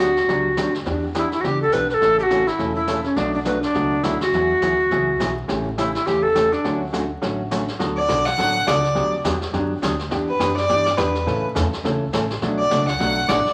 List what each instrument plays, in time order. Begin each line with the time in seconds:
Already playing: upright bass D2, recorder F#4
0.16 snare
0.27 upright bass C#2, hollow-body jazz guitar D3 F#3 B3 D4 G4, brush sweep, snare
0.57 upright bass D2, hollow-body jazz guitar D3 F#3 B3 D4 G4, snare, hi-hat pedal
0.74 snare
0.85 upright bass E2, hollow-body jazz guitar E3 B3 D4 G4, brush sweep, snare
1.15 hollow-body jazz guitar E3 B3 D4 G4, recorder E4, snare, hi-hat pedal
1.32 recorder E4, snare
1.41 upright bass C#2, hollow-body jazz guitar E3 B3 D4, recorder F#4, brush sweep, snare
1.45 hollow-body jazz guitar G4, recorder G4
1.62 recorder A4
1.72 upright bass B1, hollow-body jazz guitar E3 B3 D4 G4, recorder B4, snare, hi-hat pedal
1.90 recorder B4, snare
1.94 recorder A4
2.01 upright bass A1, hollow-body jazz guitar C#3 E3 A3 C#4 A4, brush sweep, snare
2.19 recorder F#4 G4
2.30 hollow-body jazz guitar C#3 E3 A3 C#4 A4, snare, hi-hat pedal
2.47 recorder E4, snare
2.59 upright bass E1, hollow-body jazz guitar C#3 E3 A3 C#4 A4, brush sweep, snare
2.76 recorder E4
2.87 hollow-body jazz guitar C#3 E3 A3 C#4 A4, snare, hi-hat pedal
3.04 recorder C#4, snare
3.16 upright bass B1, hollow-body jazz guitar B2 F#3 A3 D4 F#4, recorder D4, brush sweep, snare
3.34 recorder D4
3.45 hollow-body jazz guitar B2 F#3 A3 D4 F#4, recorder B4, snare, hi-hat pedal
3.62 recorder D4, snare
3.74 upright bass C#2, hollow-body jazz guitar B2 F#3 A3 D4 F#4, brush sweep, snare
4.03 upright bass D2, hollow-body jazz guitar B2 F#3 A3 D4 F#4, recorder E4, snare, hi-hat pedal
4.21 recorder F#4, snare
4.32 upright bass E2, hollow-body jazz guitar E3 F#3 B3 E4 G#4, brush sweep, snare
4.61 upright bass D2, hollow-body jazz guitar E3 F#3 B3 E4 G#4, snare, hi-hat pedal
4.91 upright bass C#2, hollow-body jazz guitar E3 F#3 B3 E4 G#4, brush sweep, snare
5.19 upright bass B1, hollow-body jazz guitar E3 F#3 B3 E4 G#4, snare, hi-hat pedal
5.48 upright bass A1, hollow-body jazz guitar C#3 E3 A3 C#4 G4, brush sweep, snare
5.78 hollow-body jazz guitar C#3 E3 A3 C#4 G4, recorder E4, snare, hi-hat pedal
5.95 recorder E4, snare
6.06 upright bass E2, hollow-body jazz guitar C#3 E3 A3 C#4 G4, recorder G4, brush sweep, snare
6.23 recorder A4
6.35 hollow-body jazz guitar C#3 E3 A3 C#4 G4, snare, hi-hat pedal
6.53 recorder D4, snare
6.64 upright bass D2, hollow-body jazz guitar D3 F#3 A3 C#4 F#4, brush sweep, snare
6.93 hollow-body jazz guitar D3 F#3 A3 C#4 F#4, snare, hi-hat pedal
7.22 upright bass A1, hollow-body jazz guitar D3 F#3 A3 C#4 F#4, brush sweep, snare
7.51 hollow-body jazz guitar D3 F#3 A3 C#4 F#4, snare, hi-hat pedal
7.68 snare
7.79 upright bass D2, hollow-body jazz guitar D3 F#3 B3 F#4 A4, brush sweep, snare
7.97 fiddle D5
8.08 upright bass B1, hollow-body jazz guitar D3 F#3 B3 F#4 A4, snare, hi-hat pedal
8.26 fiddle F#5, snare
8.38 upright bass A1, hollow-body jazz guitar D3 F#3 B3 F#4 A4, brush sweep, snare
8.67 upright bass C#2, hollow-body jazz guitar D3 F#3 B3 F#4 A4, fiddle D5, snare, hi-hat pedal
8.84 snare
8.95 upright bass D2, hollow-body jazz guitar D3 F#3 B3 D4 G4, brush sweep, snare
9.24 upright bass E2, hollow-body jazz guitar D3 F#3 B3 D4 G4, snare, hi-hat pedal
9.42 snare
9.53 upright bass F#2, hollow-body jazz guitar D3 F#3 B3 D4 G4, brush sweep, snare
9.82 upright bass D2, hollow-body jazz guitar D3 F#3 B3 D4 G4, snare, hi-hat pedal
9.99 snare
10.11 upright bass E2, hollow-body jazz guitar E3 B3 D4 G4, brush sweep, snare
10.29 fiddle B4
10.40 upright bass F#2, hollow-body jazz guitar E3 B3 D4 G4, snare, hi-hat pedal
10.57 fiddle D5, snare
10.68 upright bass G2, hollow-body jazz guitar E3 B3 D4 G4, brush sweep, snare
10.86 snare
10.97 upright bass E2, hollow-body jazz guitar E3 B3 D4 G4, fiddle B4, snare, hi-hat pedal
11.15 snare
11.26 upright bass A2, hollow-body jazz guitar C#3 E3 A3 C#4 A4, brush sweep, snare
11.55 upright bass E2, hollow-body jazz guitar C#3 E3 A3 C#4 A4, snare, hi-hat pedal
11.73 muted upright bass stroke, snare
11.84 upright bass C#2, hollow-body jazz guitar C#3 E3 A3 C#4 A4, brush sweep, snare
12.12 upright bass A1, hollow-body jazz guitar C#3 E3 A3 C#4 A4, snare, hi-hat pedal
12.30 snare
12.41 upright bass B1, hollow-body jazz guitar B2 F#3 A3 D4 F#4, brush sweep, snare
12.59 fiddle D5
12.70 upright bass C#2, hollow-body jazz guitar B2 F#3 A3 D4 F#4, snare, hi-hat pedal
12.88 fiddle F#5, snare
12.99 upright bass B1, hollow-body jazz guitar B2 F#3 A3 D4 F#4, brush sweep, snare
13.28 upright bass A1, hollow-body jazz guitar B2 F#3 A3 D4 F#4, fiddle D5, snare, hi-hat pedal
13.45 muted upright bass stroke, snare